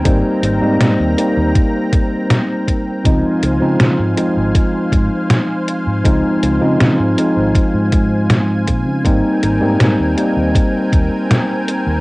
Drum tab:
HH |xxxxxxxx|xxxxxxxx|xxxxxxxx|xxxxxxxx|
SD |--o---o-|--o---o-|--o---o-|--o---o-|
BD |o---oo-o|o---oo--|o---oo-o|o---oo--|